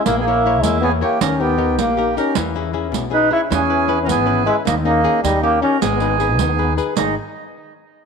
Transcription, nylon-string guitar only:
X:1
M:6/8
L:1/8
Q:3/8=104
K:G#m
V:1 name="Nylon-string guitar"
A, [EAc] [EAc] A, [EAc] [EAc] | D, [D=GA] [DGA] A, [DGA] [DGA] | E, [CEG] [CEG] B,, [CEG] [CEG] | E, [CEB] [CEB] E, [CEB] [CEB] |
D, [CDG] [CDG] D, [CD=G] [CDG] | G, [DGB] [DGB] D, [DGB] [DGB] | [G,,D,] z4 z |]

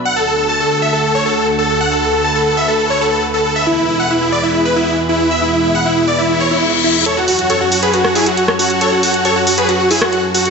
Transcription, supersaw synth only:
X:1
M:4/4
L:1/16
Q:1/4=137
K:F#m
V:1 name="Supersaw synth"
f A A A a A A e A A c A A z A A | f A A A a A A e A A c A A z A A | e E E E f E E d E E B E E z E E | e E E E f E E d E E c E E z E E |
[Ac] F F F [Ac] F F [GB] F F [EG] F F z F F | [Ac] F F F [Ac] F F [GB] F F [EG] F F z F F |]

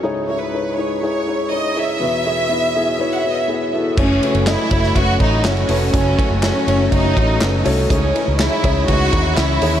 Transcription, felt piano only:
X:1
M:4/4
L:1/8
Q:1/4=122
K:F#dor
V:1 name="Felt piano"
[DEGc] [DEGe] [DEGc] [DEGc] [DEGc] [DEGc] [DEGc] [DEGc] | [B,EFB] [B,EFG] [B,EFB] [B,EFG] [B,EFc] [B,EFB] [B,EFG] [B,EFA] | [A,CFAc] [A,CFAB] [A,CFAd] [A,CFAc] [A,CFAB] [A,CFAc] [A,CFAe] [A,CFAB] | [A,CFAc] [A,CFAc] [A,CFAc] [A,CFAc] [A,CFAc] [A,CFAc] [A,CFAB] [A,CFAc] |
[CDEGc] [CDEGB] [CDEGc] [CDEGc] [CDEGB] [CDEGc] [CDEGe] [CDEGc] |]
V:2 name="Felt piano" clef=bass
[C,,G,,]8 | [E,,B,,]8 | C,3 z4 z | C,3 z4 z |
G,,3 z4 z |]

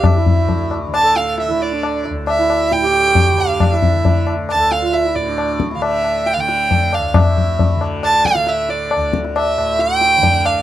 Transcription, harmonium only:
X:1
M:4/4
L:1/16
Q:1/4=135
K:none
V:1 name="Harmonium"
G E6 z2 A4 E2 D- | D3 z2 E4 G6- G- | G E6 z2 A2 F2 E2 D- | D3 z12 z |
z16 | z16 |]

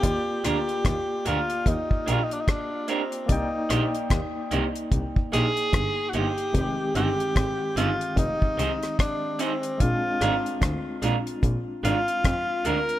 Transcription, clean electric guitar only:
X:1
M:4/4
L:1/8
Q:"Swing 16ths" 1/4=74
K:Eb
V:1 name="Clean electric guitar"
z [B,DGB] z [B,DGB] z [B,DGB] z [B,DGB] | z [B,EGc] z [B,EGc] z [B,EGc] z [B,EGc] | z [CEAc] z [CEAc] z [CEAc] z [CEAc] | z [A,DFB] z [A,DFB] z [A,DFB] z [A,DFB] |]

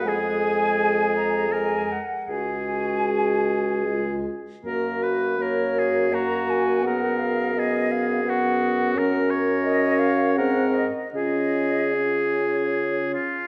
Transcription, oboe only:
X:1
M:3/4
L:1/8
Q:1/4=81
K:G#dor
V:1 name="Oboe"
_A4 _B z | G4- G z | A B A G F2 | A2 G2 F2 |
[K:Db] B d3 B z | A4- A F |]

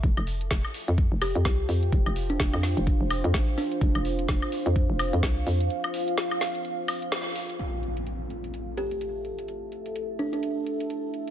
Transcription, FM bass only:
X:1
M:4/4
L:1/16
Q:"Swing 16ths" 1/4=127
K:Am
V:1 name="FM bass" clef=bass
F,,, F,,,3 F,,, z2 F,,2 F,,,2 F,, C,,2 F,,2 | F,,, F,,,3 F,,, F,,2 F,,,2 F,,,2 F,, A,,,2 z2 | F,,, F,,,3 F,,, z2 F,,2 F,,,2 F,, C,,2 F,,2 | z16 |
z16 | z16 |]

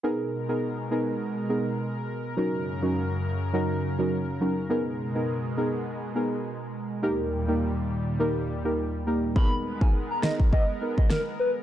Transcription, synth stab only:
X:1
M:4/4
L:1/16
Q:"Swing 16ths" 1/4=103
K:G#m
V:1 name="Synth stab"
[B,DGA]3 [B,DGA] z2 [B,DGA] z3 [B,DGA] z4 z | [F,CDFA]3 [F,CDFA] z4 [F,CDFA] z2 [F,CDFA] z2 [F,CDFA] z | [B,DGA]3 [B,DGA] z2 [B,DGA] z3 [B,DGA] z4 z | [A,D=GA]3 [A,DGA] z4 [A,DGA] z2 [A,DGA] z2 [A,DGA] z |
[B,DGA]3 [B,DGA] z2 [B,DGA] z3 [B,DGA] z4 z |]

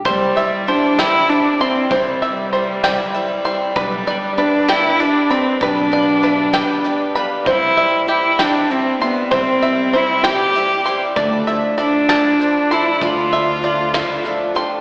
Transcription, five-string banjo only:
X:1
M:6/8
L:1/8
Q:3/8=65
K:C
V:1 name="Five-string banjo"
c e c g2 c' | c e c g2 c' | B d B g2 b | B d B g2 b |
c e G g2 c' | c e c g2 c' | d e d a2 c' | d e d f2 c' |]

